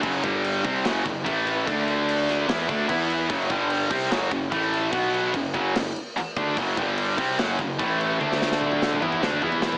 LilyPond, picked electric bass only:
\new Staff \with { instrumentName = "Picked electric bass" } { \clef bass \time 4/4 \key fis \minor \tempo 4 = 147 fis,,8 g,,4 bis,,8 fis,,8 fis,,8 a,,4 | d,2 e,8 d,8 e,4 | fis,,8 g,,4 bis,,8 fis,,8 fis,,8 a,,4 | b,,4 fis,,8 fis,,8 fis,,8 r4 d,8 |
fis,,8 g,,4 bis,,8 fis,,8 fis,,8 a,,4 | d,2 e,8 d,8 e,4 | }